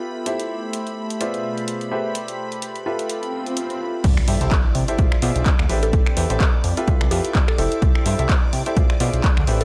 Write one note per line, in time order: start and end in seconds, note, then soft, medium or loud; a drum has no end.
0.00 0.26 B3 medium
0.00 0.24 F4 medium
0.00 0.26 F4 medium
0.00 0.24 G4 medium
0.00 0.24 A4 medium
0.00 1.21 A4 medium
0.00 0.24 B4 medium
0.00 0.24 E5 medium
0.00 2.30 E5 medium
0.00 1.21 G5 medium
0.00 4.05 B5 medium
0.26 3.33 A3 medium
0.26 1.18 E4 medium
0.26 1.18 G4 medium
0.26 1.18 A4 medium
0.26 1.18 C5 medium
0.26 1.18 E5 medium
0.26 closed hi-hat medium
0.40 closed hi-hat soft
0.73 closed hi-hat medium
0.87 closed hi-hat soft
1.10 closed hi-hat soft
1.21 1.92 B2 medium
1.21 1.89 B3 medium
1.21 1.89 F4 medium
1.21 1.89 G#4 medium
1.21 1.89 C5 medium
1.21 1.89 D5 medium
1.21 1.89 E5 medium
1.21 closed hi-hat medium
1.34 closed hi-hat soft
1.53 1.91 F4 medium
1.53 1.91 G#4 medium
1.53 2.30 D5 medium
1.58 closed hi-hat soft
1.68 closed hi-hat medium
1.81 closed hi-hat soft
1.92 2.84 G4 medium
1.92 2.84 A4 medium
1.92 2.84 B4 medium
1.92 2.84 C5 medium
1.92 2.84 E5 medium
1.96 4.99 A4 medium
2.08 4.99 G5 medium
2.15 closed hi-hat medium
2.28 closed hi-hat medium
2.35 4.04 B5 medium
2.52 closed hi-hat soft
2.62 closed hi-hat medium
2.76 closed hi-hat soft
2.86 4.02 F4 medium
2.86 4.04 F4 medium
2.86 4.02 G4 medium
2.86 4.02 A4 medium
2.86 4.02 B4 medium
2.86 4.02 E5 medium
2.99 closed hi-hat soft
3.10 closed hi-hat medium
3.10 swell medium
3.23 closed hi-hat soft
3.40 4.43 E5 medium
3.46 closed hi-hat soft
3.57 closed hi-hat medium
3.70 closed hi-hat soft
4.04 4.14 C2 loud
4.04 4.99 E4 medium
4.04 9.64 D5 medium
4.04 9.64 D6 medium
4.04 kick loud
4.04 closed hi-hat medium
4.04 crash loud
4.04 impact medium
4.17 finger snap medium
4.28 4.37 G2 loud
4.28 4.39 E4 medium
4.28 4.39 G4 medium
4.28 4.39 A4 medium
4.28 4.39 C5 medium
4.28 4.39 E5 loud
4.28 open hi-hat loud
4.41 4.48 C2 loud
4.41 4.52 E4 medium
4.41 4.52 G4 medium
4.41 4.52 A4 medium
4.41 4.52 C5 medium
4.41 4.52 E5 loud
4.41 closed hi-hat medium
4.47 5.69 C6 medium
4.51 kick loud
4.51 clap loud
4.51 closed hi-hat medium
4.75 4.84 C3 medium
4.75 open hi-hat medium
4.88 4.97 E4 medium
4.88 4.97 G4 medium
4.88 4.97 A4 medium
4.88 4.97 C5 medium
4.88 4.97 E5 medium
4.88 closed hi-hat medium
4.99 5.08 B1 medium
4.99 6.08 D4 medium
4.99 5.13 F4 medium
4.99 5.13 G#4 medium
4.99 5.13 C5 medium
4.99 5.13 D5 medium
4.99 5.13 E5 medium
4.99 kick loud
4.99 closed hi-hat medium
5.12 finger snap medium
5.22 5.32 B2 loud
5.22 5.43 F4 medium
5.22 5.43 G#4 medium
5.22 5.43 C5 medium
5.22 5.43 D5 medium
5.22 5.43 E5 loud
5.22 open hi-hat loud
5.27 5.69 G#4 medium
5.32 5.43 B1 medium
5.32 5.70 F5 medium
5.32 closed hi-hat medium
5.46 kick loud
5.46 clap loud
5.46 closed hi-hat medium
5.59 5.67 D2 medium
5.59 finger snap medium
5.69 6.00 A1 medium
5.69 7.11 C4 medium
5.69 6.14 G4 medium
5.69 6.14 A4 medium
5.69 6.14 B4 medium
5.69 6.14 C5 medium
5.69 6.14 E5 loud
5.69 open hi-hat medium
5.83 6.17 A4 medium
5.83 8.77 A4 medium
5.83 closed hi-hat medium
5.93 kick loud
5.93 closed hi-hat medium
6.06 7.82 B5 medium
6.06 finger snap medium
6.13 8.77 G5 medium
6.17 6.26 E2 loud
6.17 6.28 G4 medium
6.17 6.28 A4 medium
6.17 6.28 B4 medium
6.17 6.28 C5 medium
6.17 6.28 E5 loud
6.17 open hi-hat loud
6.30 6.37 A1 loud
6.30 6.41 G4 loud
6.30 6.41 A4 medium
6.30 6.41 B4 medium
6.30 6.41 C5 medium
6.30 6.41 E5 loud
6.30 closed hi-hat medium
6.40 kick loud
6.40 clap loud
6.40 closed hi-hat medium
6.64 6.73 F2 medium
6.64 8.77 E4 medium
6.64 open hi-hat medium
6.77 6.86 F4 medium
6.77 6.86 G4 medium
6.77 6.86 A4 medium
6.77 6.86 B4 medium
6.77 6.86 E5 loud
6.77 closed hi-hat medium
6.88 6.97 C2 medium
6.88 7.02 F4 medium
6.88 7.02 G4 medium
6.88 7.02 A4 medium
6.88 7.02 B4 medium
6.88 7.02 E5 medium
6.88 kick loud
6.88 closed hi-hat medium
7.01 7.08 C2 medium
7.01 finger snap medium
7.11 7.21 F2 medium
7.11 7.32 F4 medium
7.11 7.25 G4 medium
7.11 7.32 G4 medium
7.11 7.32 A4 medium
7.11 7.32 B4 medium
7.11 7.32 E5 loud
7.11 open hi-hat loud
7.25 closed hi-hat medium
7.35 kick loud
7.35 clap loud
7.35 closed hi-hat medium
7.48 7.55 A4 medium
7.48 finger snap medium
7.58 7.68 F1 medium
7.58 8.03 E4 medium
7.58 8.03 G4 medium
7.58 7.67 A4 medium
7.58 8.03 A4 medium
7.58 8.03 C5 medium
7.58 8.03 E5 loud
7.58 open hi-hat loud
7.72 closed hi-hat medium
7.82 7.92 C2 loud
7.82 kick loud
7.82 closed hi-hat medium
7.95 finger snap medium
8.06 8.15 G2 loud
8.06 8.17 E4 medium
8.06 8.17 G4 medium
8.06 8.17 A4 medium
8.06 8.17 C5 medium
8.06 8.17 E5 loud
8.06 open hi-hat loud
8.15 8.26 C2 loud
8.15 8.30 E4 medium
8.15 8.30 G4 medium
8.15 8.30 A4 medium
8.15 8.30 C5 medium
8.15 8.30 E5 loud
8.15 9.47 C6 medium
8.15 closed hi-hat medium
8.29 kick loud
8.29 clap loud
8.29 closed hi-hat medium
8.53 8.62 C3 medium
8.53 open hi-hat loud
8.66 8.75 E4 medium
8.66 8.75 G4 medium
8.66 8.75 A4 medium
8.66 8.75 C5 medium
8.66 8.75 E5 medium
8.66 closed hi-hat medium
8.77 8.86 B1 medium
8.77 9.64 D4 medium
8.77 8.90 F4 medium
8.77 8.90 G#4 medium
8.77 8.90 C5 medium
8.77 8.90 D5 medium
8.77 8.90 E5 medium
8.77 kick loud
8.77 closed hi-hat medium
8.90 finger snap medium
8.95 9.47 G#4 medium
8.95 9.47 F5 medium
9.00 9.10 B2 loud
9.00 9.21 F4 medium
9.00 9.21 G#4 medium
9.00 9.21 C5 medium
9.00 9.21 D5 medium
9.00 9.21 E5 loud
9.00 open hi-hat loud
9.13 9.21 B1 medium
9.13 closed hi-hat medium
9.24 kick loud
9.24 clap loud
9.24 closed hi-hat medium
9.37 9.44 D2 medium
9.37 finger snap medium
9.47 9.64 A1 medium
9.47 9.64 C4 medium
9.47 9.64 G4 medium
9.47 9.64 A4 medium
9.47 9.64 B4 medium
9.47 9.64 C5 medium
9.47 9.64 E5 loud
9.47 open hi-hat loud
9.56 9.64 A4 medium
9.56 9.64 G5 medium
9.61 9.64 A4 medium
9.61 closed hi-hat medium